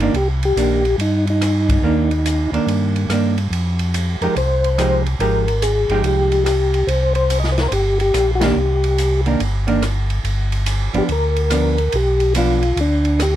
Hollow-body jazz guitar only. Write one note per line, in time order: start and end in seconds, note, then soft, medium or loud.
0.01 0.13 D#3 medium
0.01 0.13 A#3 medium
0.01 0.14 D4 medium
0.57 0.81 D#3 soft
0.57 0.82 A#3 soft
0.57 0.82 D4 medium
1.83 2.08 D#3 soft
1.83 2.08 A#3 medium
1.83 2.08 D4 medium
2.53 3.06 D#3 medium
2.53 3.07 A#3 medium
2.53 3.07 D4 medium
3.10 3.35 D#3 soft
3.10 3.35 A#3 medium
3.10 3.35 D4 medium
4.23 4.35 F3 soft
4.23 4.35 G#3 soft
4.23 4.35 D#4 medium
4.23 4.35 G4 soft
4.78 5.03 F3 medium
4.78 5.03 G#3 medium
4.78 5.03 D#4 medium
4.78 5.03 G4 medium
5.20 5.45 F3 soft
5.20 5.45 G#3 medium
5.20 5.45 D#4 medium
5.20 5.45 G4 medium
5.90 6.43 F3 medium
5.90 6.44 G#3 medium
5.90 6.44 D#4 medium
5.90 6.44 G4 medium
8.42 8.55 D#3 medium
8.42 8.55 A#3 medium
8.42 8.56 D4 medium
9.26 9.39 D#3 medium
9.26 9.39 A#3 medium
9.26 9.40 D4 medium
9.67 9.81 D#3 medium
9.67 9.81 A#3 medium
9.67 9.81 D4 medium
10.94 11.07 F3 medium
10.94 11.07 B3 medium
10.94 11.07 D4 medium
11.50 11.75 F3 soft
11.50 11.76 B3 medium
11.50 11.76 D4 medium
12.35 12.60 F3 medium
12.35 12.60 B3 medium
12.35 12.61 D4 medium